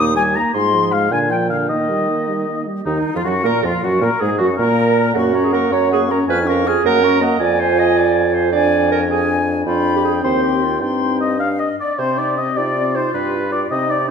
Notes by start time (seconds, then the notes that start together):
Already playing: D#2 A#3 D#6
0.00 D#4
0.16 G3 G4 G#5
0.35 A#3 D#4 A#5
0.54 G#2 G#3 F4 C6
0.74 F3 G#4
0.92 G#3 F4 F5
1.11 A#2 D3 D4 G#5
1.30 F3 F4 G5
1.50 D3 D4 F5
1.69 D#3 A#3 D#4 D#5
1.89 G3 G4
2.08 A#3 D#4
2.28 G3 G4
2.48 A#3 D#4
2.67 G3 G4
2.85 D#2 D#3 D#4
3.14 F2 F3 F4
3.24 F#2 F#3 F#4
3.43 A#2 A#3 A#4
3.63 F2 F3 F4
3.82 F#2 F#3 F#4
4.01 A#2 A#3 A#4
4.21 G#2 G#3 G#4
4.38 F#2 F#3 F#4
4.57 A#2 A#3 A#4
5.14 F#2 A#3 F#4 F#5 C#6
5.33 C#4 C#5 A#5
5.44 G#4
5.53 A#3 A#4 F#5 C#6
5.71 F#2 C#4 C#5 A#5
5.91 A#3 G#4 F#5 C#6
6.09 C#4 A#4 C#5 A#5
6.28 F2 F4 B4 G#5 F6
6.47 C#4 A#4 F5 C#6
6.65 F4 G#4 G#5 F6
6.84 F#2 A#3 A#4 F#5 A#5
7.03 C#4 A#5 C#6
7.21 A#3 D#5 F#5 A#5
7.40 F2 F4 D5 G#5
7.59 C5
7.79 D#5
7.97 D5
8.34 C5
8.52 D4 D5 G#5
8.92 A#4
9.10 D4 G#4 G#5
9.66 F2 D4 F4 G5 B5
9.96 G4
10.05 G#4
10.22 D#2 C4 C5 G5 C6
10.43 G4
10.63 F4
10.80 G2 C4 D#4 G5 C6
11.21 D#5
11.39 D4 F5
11.59 D#5
11.80 D5
11.99 C3 C4 G4 C5
12.18 D#4 D5
12.38 C4 D#5
12.56 C3 D#4 F4 D5
12.77 C4
12.95 D#4 C5
13.14 G2 G4 B4
13.36 F4
13.52 G4 D5
13.71 C3 C4 D#4 D#5
13.89 D#4 D5